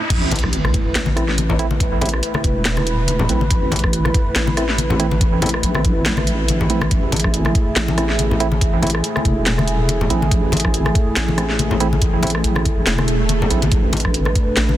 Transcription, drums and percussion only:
0.10 kick, closed hi-hat, crash
0.31 closed hi-hat, high conga, low conga
0.36 closed hi-hat
0.39 closed hi-hat
0.43 kick, cross-stick
0.53 closed hi-hat
0.65 cross-stick, high conga
0.74 kick, closed hi-hat
0.95 snare, closed hi-hat
1.06 high conga
1.17 cross-stick, closed hi-hat
1.29 snare
1.38 closed hi-hat, high conga
1.50 low conga
1.59 closed hi-hat
1.71 high conga
1.80 kick, closed hi-hat
2.01 closed hi-hat, high conga, low conga
2.06 closed hi-hat
2.09 closed hi-hat
2.14 cross-stick
2.23 closed hi-hat
2.34 cross-stick, high conga
2.44 kick, closed hi-hat
2.65 snare, closed hi-hat
2.77 cross-stick, high conga
2.87 closed hi-hat
3.08 closed hi-hat, high conga
3.19 low conga
3.29 closed hi-hat
3.41 high conga
3.50 kick, closed hi-hat
3.72 closed hi-hat, high conga, low conga
3.76 closed hi-hat
3.79 closed hi-hat
3.84 kick, cross-stick
3.93 closed hi-hat
4.05 cross-stick, high conga
4.14 kick, closed hi-hat
4.36 snare, closed hi-hat
4.47 high conga
4.57 cross-stick, closed hi-hat
4.69 snare
4.78 closed hi-hat, high conga
4.90 low conga
5.00 closed hi-hat
5.11 high conga
5.21 kick, closed hi-hat
5.42 closed hi-hat, high conga, low conga
5.46 closed hi-hat
5.49 closed hi-hat
5.54 cross-stick
5.63 closed hi-hat
5.75 cross-stick, high conga
5.85 kick, closed hi-hat
6.06 snare, closed hi-hat
6.17 cross-stick, high conga
6.27 closed hi-hat
6.48 closed hi-hat, high conga
6.61 low conga
6.70 closed hi-hat
6.81 cross-stick, high conga
6.91 kick, closed hi-hat
7.12 closed hi-hat, high conga, low conga
7.16 closed hi-hat
7.20 closed hi-hat
7.24 kick, cross-stick
7.34 closed hi-hat
7.45 cross-stick, high conga
7.55 kick, closed hi-hat
7.76 snare, closed hi-hat
7.88 high conga
7.98 cross-stick, closed hi-hat
8.09 snare
8.19 closed hi-hat, high conga
8.31 low conga
8.40 closed hi-hat
8.52 high conga
8.61 kick, closed hi-hat
8.82 closed hi-hat, high conga, low conga
8.87 closed hi-hat
8.90 closed hi-hat
8.95 cross-stick
9.04 closed hi-hat
9.16 cross-stick, high conga
9.25 kick, closed hi-hat
9.46 snare, closed hi-hat
9.58 cross-stick, high conga
9.68 closed hi-hat
9.89 closed hi-hat, high conga
10.01 low conga
10.10 closed hi-hat
10.22 high conga
10.31 kick, closed hi-hat
10.52 closed hi-hat, high conga, low conga
10.57 closed hi-hat
10.60 closed hi-hat
10.65 kick, cross-stick
10.74 closed hi-hat
10.86 cross-stick, high conga
10.95 kick, closed hi-hat
11.17 snare, closed hi-hat
11.28 high conga
11.38 cross-stick, closed hi-hat
11.50 snare
11.59 closed hi-hat, high conga
11.71 low conga
11.80 closed hi-hat
11.93 high conga
12.02 kick, closed hi-hat
12.23 closed hi-hat, high conga, low conga
12.27 closed hi-hat
12.30 closed hi-hat
12.35 cross-stick
12.44 closed hi-hat
12.56 cross-stick, high conga
12.65 kick, closed hi-hat
12.87 snare, closed hi-hat
12.98 cross-stick, high conga
13.08 closed hi-hat
13.29 closed hi-hat, high conga
13.42 low conga
13.51 closed hi-hat
13.62 closed hi-hat, high conga
13.72 kick, closed hi-hat
13.93 closed hi-hat, high conga, low conga
13.97 closed hi-hat
14.00 closed hi-hat
14.05 kick, cross-stick
14.14 closed hi-hat
14.25 cross-stick, high conga
14.35 kick, closed hi-hat
14.57 snare, closed hi-hat
14.69 high conga

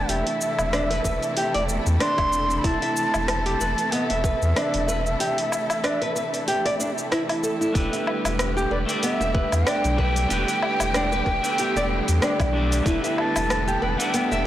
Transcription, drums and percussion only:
0.09 open hi-hat, shaker
0.27 open hi-hat
0.41 shaker
0.59 low woodblock, shaker
0.73 cross-stick, open hi-hat, shaker
0.91 open hi-hat
1.05 kick, shaker
1.23 open hi-hat, shaker
1.37 open hi-hat, shaker
1.54 open hi-hat
1.69 shaker
1.86 shaker
2.00 cross-stick, open hi-hat, shaker
2.18 kick, open hi-hat, low woodblock
2.33 shaker
2.50 shaker
2.64 kick, open hi-hat, shaker
2.82 open hi-hat
2.97 shaker
3.14 low woodblock, shaker
3.28 cross-stick, open hi-hat, shaker
3.46 open hi-hat
3.61 shaker
3.78 open hi-hat, shaker
3.92 open hi-hat, shaker
4.10 open hi-hat
4.24 kick, shaker
4.42 shaker
4.56 cross-stick, open hi-hat, shaker
4.74 open hi-hat
4.89 shaker
5.07 shaker
5.20 open hi-hat, shaker
5.38 open hi-hat
5.52 low woodblock, shaker
5.70 open hi-hat, low woodblock, shaker
5.84 cross-stick, open hi-hat, shaker
6.02 open hi-hat
6.16 shaker
6.34 open hi-hat, shaker
6.48 open hi-hat, shaker
6.66 cross-stick, open hi-hat
6.80 shaker
6.98 shaker
7.12 cross-stick, open hi-hat, shaker
7.29 open hi-hat, low woodblock
7.44 shaker
7.62 shaker
7.75 kick, open hi-hat, shaker
7.93 open hi-hat, shaker
8.07 low woodblock
8.25 open hi-hat, low woodblock, shaker
8.39 cross-stick, open hi-hat, shaker
8.58 shaker
8.89 open hi-hat, shaker
9.03 open hi-hat, shaker
9.21 shaker
9.35 kick
9.52 open hi-hat, low woodblock, shaker
9.67 cross-stick, open hi-hat, shaker
9.84 open hi-hat, shaker
9.98 kick
10.16 open hi-hat, shaker
10.30 open hi-hat, shaker
10.48 open hi-hat, shaker
10.62 low woodblock
10.80 open hi-hat, low woodblock, shaker
10.94 cross-stick, open hi-hat, shaker
11.12 shaker
11.26 kick
11.44 open hi-hat, shaker
11.58 open hi-hat, shaker
11.77 shaker
12.08 open hi-hat, shaker
12.22 cross-stick, open hi-hat, shaker
12.40 kick, open hi-hat, low woodblock, shaker
12.72 open hi-hat, shaker
12.86 kick, open hi-hat, shaker
13.04 open hi-hat, shaker
13.18 low woodblock
13.36 open hi-hat, low woodblock, shaker
13.50 cross-stick, open hi-hat, shaker
13.68 shaker
14.00 open hi-hat, shaker
14.14 open hi-hat, shaker
14.32 shaker

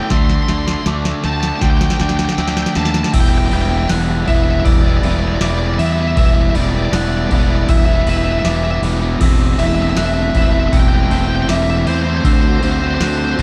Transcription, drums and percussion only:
0.10 kick, snare
0.30 snare
0.48 snare
0.68 snare
0.86 snare
1.05 snare
1.24 snare
1.43 snare
1.61 kick, snare
1.81 snare
1.90 snare
1.99 snare
2.09 snare
2.19 snare
2.29 snare
2.38 snare
2.47 snare
2.57 snare
2.66 snare
2.75 snare
2.85 snare
2.94 snare
3.04 snare
3.14 kick, open hi-hat, crash
3.51 open hi-hat
3.89 snare, open hi-hat
4.28 kick, open hi-hat
4.65 kick, open hi-hat
5.03 open hi-hat
5.41 snare, open hi-hat
5.79 open hi-hat
6.17 kick, open hi-hat
6.55 open hi-hat
6.93 snare, open hi-hat
7.31 kick, open hi-hat
7.69 kick, open hi-hat
8.07 open hi-hat
8.45 snare, open hi-hat
8.83 open hi-hat
9.21 kick, crash
9.59 open hi-hat
9.97 snare, open hi-hat
10.35 kick, open hi-hat
10.73 kick, open hi-hat
11.11 open hi-hat
11.49 snare, open hi-hat
11.87 open hi-hat
12.25 kick, open hi-hat
12.63 open hi-hat
13.00 snare, open hi-hat
13.39 kick, open hi-hat

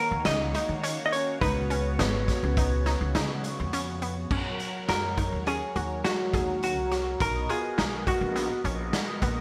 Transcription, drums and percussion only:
0.25 snare, closed hi-hat
0.54 closed hi-hat
0.84 closed hi-hat
1.13 closed hi-hat
1.41 kick, closed hi-hat
1.71 closed hi-hat
1.99 snare, closed hi-hat
2.28 kick, snare, closed hi-hat
2.57 kick, closed hi-hat
2.86 snare, closed hi-hat
3.15 snare, closed hi-hat
3.44 closed hi-hat
3.73 closed hi-hat
4.02 closed hi-hat
4.31 kick, crash
4.60 closed hi-hat
4.89 snare, closed hi-hat
5.18 kick, closed hi-hat
5.47 closed hi-hat
5.76 closed hi-hat
6.05 snare, closed hi-hat
6.33 kick, closed hi-hat
6.63 closed hi-hat
6.92 snare, closed hi-hat
7.20 kick, closed hi-hat
7.50 closed hi-hat
7.79 snare, closed hi-hat
8.07 kick, closed hi-hat
8.36 snare, closed hi-hat
8.65 closed hi-hat
8.93 snare, closed hi-hat
9.22 kick, closed hi-hat

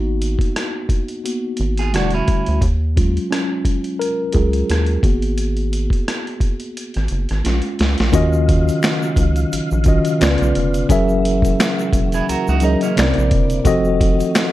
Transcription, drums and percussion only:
0.22 closed hi-hat
0.39 kick, closed hi-hat
0.56 cross-stick, closed hi-hat
0.89 kick, closed hi-hat
1.08 closed hi-hat
1.26 closed hi-hat
1.57 closed hi-hat
1.77 closed hi-hat
1.94 cross-stick, closed hi-hat
2.10 closed hi-hat
2.28 kick, closed hi-hat
2.46 closed hi-hat
2.61 kick, closed hi-hat
2.97 kick, closed hi-hat
3.17 closed hi-hat
3.32 cross-stick, closed hi-hat
3.65 kick, closed hi-hat
3.84 closed hi-hat
4.01 closed hi-hat
4.32 kick, closed hi-hat
4.53 closed hi-hat
4.70 cross-stick, closed hi-hat
4.86 closed hi-hat
5.03 kick, closed hi-hat
5.22 closed hi-hat
5.38 closed hi-hat
5.57 closed hi-hat
5.73 closed hi-hat
5.90 kick, closed hi-hat
6.08 cross-stick, closed hi-hat
6.27 closed hi-hat
6.40 kick, closed hi-hat
6.60 closed hi-hat
6.77 closed hi-hat
6.94 cross-stick, closed hi-hat
7.08 closed hi-hat
7.29 cross-stick, closed hi-hat
7.45 snare, closed hi-hat
7.62 closed hi-hat
7.79 snare, closed hi-hat
7.98 snare, closed hi-hat
8.13 kick, closed hi-hat, shaker
8.33 shaker
8.49 kick, closed hi-hat
8.68 closed hi-hat, shaker
8.83 finger snap, snare, closed hi-hat, shaker
8.85 finger snap
9.02 shaker
9.16 kick, closed hi-hat, shaker
9.36 closed hi-hat, shaker
9.52 closed hi-hat, shaker
9.71 shaker
9.84 kick, closed hi-hat, shaker
10.05 closed hi-hat, shaker
10.21 finger snap, snare, closed hi-hat, shaker
10.24 finger snap
10.38 closed hi-hat
10.43 shaker
10.55 closed hi-hat
10.74 closed hi-hat, shaker
10.89 kick, closed hi-hat, shaker
11.09 shaker
11.25 closed hi-hat
11.42 kick, closed hi-hat, shaker
11.60 finger snap, snare, closed hi-hat, shaker
11.79 shaker
11.93 kick, closed hi-hat, shaker
12.12 closed hi-hat, shaker
12.29 closed hi-hat, shaker
12.47 shaker
12.60 closed hi-hat, shaker
12.81 closed hi-hat, shaker
12.97 finger snap, snare, closed hi-hat, shaker
13.00 finger snap
13.14 closed hi-hat
13.19 shaker
13.31 kick, closed hi-hat
13.50 closed hi-hat, shaker
13.65 kick, closed hi-hat, shaker
13.85 shaker
14.01 kick, closed hi-hat
14.20 closed hi-hat, shaker
14.35 finger snap, snare, closed hi-hat, shaker

